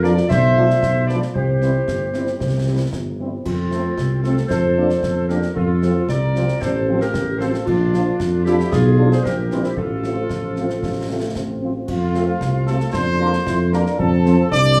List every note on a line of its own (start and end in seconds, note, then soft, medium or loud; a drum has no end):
0.00 0.21 F2 medium
0.00 0.12 F3 medium
0.00 0.13 F3 medium
0.00 0.12 D4 medium
0.00 0.13 D4 medium
0.00 0.13 F4 medium
0.00 0.15 A#4 medium
0.00 0.30 D5 loud
0.04 snare soft
0.17 snare soft
0.29 0.73 B1 medium
0.29 1.05 C5 loud
0.29 1.05 E5 loud
0.29 concert bass drum medium
0.29 snare medium
0.56 0.65 F3 medium
0.56 0.65 G#3 medium
0.56 0.65 D4 medium
0.56 0.65 F4 medium
0.70 snare medium
0.81 1.21 B1 medium
0.81 concert bass drum medium
0.81 snare medium
1.07 1.18 F3 medium
1.07 1.18 G#3 soft
1.07 1.18 D4 soft
1.07 1.18 D4 medium
1.07 1.18 F4 soft
1.07 1.20 B4 medium
1.07 1.19 D5 medium
1.07 snare soft
1.22 snare soft
1.34 1.78 C2 medium
1.34 2.89 G4 medium
1.34 2.89 C5 medium
1.34 concert bass drum medium
1.61 1.71 E3 soft
1.61 1.71 G3 soft
1.61 1.71 C4 soft
1.61 1.71 C4 medium
1.61 1.71 E4 soft
1.61 snare soft
1.87 2.31 G1 medium
1.87 concert bass drum medium
1.87 snare medium
2.13 2.23 E3 soft
2.13 2.24 G3 soft
2.13 2.23 C4 soft
2.13 2.24 C4 soft
2.13 2.24 E4 soft
2.13 snare soft
2.27 snare soft
2.40 2.84 C2 medium
2.40 concert bass drum medium
2.40 snare medium
2.67 2.76 E3 soft
2.67 2.76 G3 soft
2.67 2.76 C4 soft
2.67 2.76 E4 soft
2.92 3.36 G1 soft
2.92 concert bass drum medium
2.92 snare medium
3.19 3.28 E3 soft
3.19 3.29 G3 soft
3.19 3.29 C4 soft
3.19 3.29 E4 soft
3.45 3.89 F2 medium
3.45 4.21 C4 medium
3.45 4.20 F4 medium
3.45 concert bass drum medium
3.45 crash medium
3.71 3.81 F3 soft
3.71 3.81 A3 medium
3.71 3.82 A3 soft
3.71 3.81 C4 medium
3.71 3.82 C4 soft
3.71 snare medium
3.97 4.42 C2 medium
3.97 concert bass drum medium
3.97 snare medium
4.24 4.34 F3 soft
4.24 4.34 A3 soft
4.24 4.34 A3 medium
4.24 4.34 C4 soft
4.24 4.34 C4 medium
4.24 4.36 F4 medium
4.24 4.49 A4 medium
4.24 snare soft
4.37 snare soft
4.48 4.94 F2 medium
4.48 5.26 A4 medium
4.48 5.25 C5 medium
4.48 concert bass drum medium
4.48 snare medium
4.77 4.87 F3 soft
4.77 4.86 A#3 medium
4.77 4.87 A#3 soft
4.77 4.86 D4 medium
4.77 4.87 D4 medium
4.90 snare medium
5.03 5.47 F2 medium
5.03 concert bass drum medium
5.03 snare medium
5.28 5.39 F3 soft
5.28 5.39 A#3 soft
5.28 5.39 A#3 medium
5.28 5.39 D4 medium
5.28 5.42 G4 medium
5.28 5.55 A#4 medium
5.28 snare soft
5.42 snare soft
5.55 6.00 F2 medium
5.55 6.04 F4 medium
5.55 6.05 A4 medium
5.55 concert bass drum medium
5.82 5.91 F3 medium
5.82 5.93 F3 medium
5.82 5.91 C4 medium
5.82 5.92 C4 medium
5.82 5.93 F4 medium
5.82 snare medium
6.08 6.52 C2 medium
6.08 6.62 A#4 medium
6.08 6.62 D5 loud
6.08 concert bass drum medium
6.08 snare medium
6.35 6.44 F3 medium
6.35 6.45 F3 medium
6.35 6.44 C4 medium
6.35 6.45 C4 medium
6.35 6.44 F4 soft
6.35 snare medium
6.48 snare soft
6.61 7.05 A1 medium
6.61 6.98 A4 medium
6.61 7.01 C5 medium
6.61 concert bass drum medium
6.61 snare medium
6.88 6.97 F3 medium
6.88 6.98 F3 medium
6.88 6.97 C4 medium
6.88 6.98 C4 medium
6.88 6.98 F4 medium
7.01 7.38 G4 medium
7.01 7.38 A#4 medium
7.01 snare medium
7.14 7.54 A1 medium
7.14 concert bass drum medium
7.14 snare medium
7.39 7.50 F3 medium
7.39 7.50 C4 medium
7.39 7.50 F4 medium
7.39 7.65 A4 medium
7.39 7.51 C5 medium
7.39 snare medium
7.54 snare medium
7.65 8.11 A#1 medium
7.65 8.42 D4 medium
7.65 8.41 F4 medium
7.65 concert bass drum medium
7.65 crash soft
7.94 8.03 F3 medium
7.94 8.03 D4 medium
7.94 8.03 F4 medium
7.94 snare medium
8.20 8.63 F2 medium
8.20 concert bass drum medium
8.20 snare medium
8.45 8.56 F3 medium
8.45 8.56 D4 medium
8.45 8.70 E4 medium
8.45 8.56 F4 medium
8.45 8.72 G4 medium
8.45 snare medium
8.60 snare medium
8.71 9.16 B1 medium
8.71 9.08 F4 medium
8.71 9.09 G#4 medium
8.71 concert bass drum medium
8.71 snare medium
8.98 9.08 F3 medium
8.98 9.08 D4 medium
8.98 9.08 F4 medium
9.11 9.24 G#4 medium
9.11 9.25 C5 medium
9.11 snare medium
9.24 9.69 A#1 medium
9.24 9.61 G4 medium
9.24 9.64 A#4 medium
9.24 concert bass drum medium
9.24 snare medium
9.51 9.60 E3 medium
9.51 9.61 G3 medium
9.51 9.61 C4 medium
9.51 9.61 E4 medium
9.51 snare soft
9.64 9.70 E4 medium
9.64 9.77 G4 medium
9.64 snare soft
9.77 10.22 A1 medium
9.77 11.58 F4 medium
9.77 11.58 A4 medium
9.77 concert bass drum medium
10.04 10.13 F3 soft
10.04 10.14 A3 soft
10.04 10.13 C4 medium
10.04 10.14 C4 soft
10.04 10.14 F4 medium
10.04 snare soft
10.30 10.74 A1 medium
10.30 11.11 F3 medium
10.30 concert bass drum medium
10.30 snare medium
10.56 10.66 F3 medium
10.56 10.66 A3 soft
10.56 10.66 C4 soft
10.56 10.66 C4 medium
10.56 10.66 F4 soft
10.56 snare soft
10.70 snare soft
10.82 11.26 A1 medium
10.82 concert bass drum medium
10.82 snare medium
11.09 11.18 F3 medium
11.09 11.19 A3 soft
11.09 11.38 A3 medium
11.09 11.18 C4 soft
11.09 11.19 C4 soft
11.09 11.18 F4 soft
11.35 11.79 A1 medium
11.35 11.89 C4 medium
11.35 concert bass drum medium
11.35 snare medium
11.62 11.71 F3 soft
11.62 11.72 A3 soft
11.62 11.71 C4 soft
11.62 11.72 C4 soft
11.62 11.72 F4 soft
11.87 12.32 F2 medium
11.87 12.63 F4 medium
11.87 12.64 F5 medium
11.87 concert bass drum medium
11.87 crash medium
12.15 12.24 A3 medium
12.15 12.25 A3 medium
12.15 12.24 C4 medium
12.15 12.24 F4 medium
12.15 12.24 A4 medium
12.15 snare medium
12.40 12.84 C2 medium
12.40 12.90 C4 medium
12.40 concert bass drum medium
12.40 snare medium
12.66 12.77 A3 medium
12.66 12.78 A3 medium
12.66 12.76 C4 medium
12.66 12.77 C4 medium
12.66 12.78 F4 medium
12.66 12.76 A4 medium
12.66 12.92 A4 medium
12.66 12.94 A5 medium
12.66 snare soft
12.80 snare soft
12.93 13.38 F2 medium
12.93 13.06 D4 medium
12.93 13.68 C5 loud
12.93 13.69 C6 medium
12.93 concert bass drum medium
12.93 snare medium
13.19 13.29 A#3 medium
13.19 13.30 A#3 medium
13.19 13.29 D4 medium
13.19 13.30 D4 medium
13.19 13.32 F4 medium
13.19 13.30 F4 medium
13.19 13.29 A#4 medium
13.33 snare medium
13.46 13.86 F2 medium
13.46 13.58 E4 medium
13.46 concert bass drum medium
13.46 snare medium
13.72 13.81 A#3 medium
13.72 13.82 A#3 medium
13.72 14.00 D4 medium
13.72 13.82 D4 medium
13.72 13.83 F4 medium
13.72 13.82 A#4 medium
13.72 13.99 A#4 medium
13.72 13.79 A#5 medium
13.72 snare medium
13.86 snare soft
13.99 14.43 F2 medium
13.99 14.51 C4 medium
13.99 14.48 A4 medium
13.99 14.48 A5 medium
13.99 concert bass drum medium
14.24 14.34 F3 medium
14.24 14.35 F3 medium
14.24 14.34 C4 medium
14.24 14.35 C4 medium
14.24 14.34 F4 medium
14.24 14.34 C5 medium
14.24 snare medium
14.51 14.80 C2 medium
14.51 14.80 D4 medium
14.51 14.80 D5 loud
14.51 14.80 D6 loud
14.51 concert bass drum medium
14.51 snare medium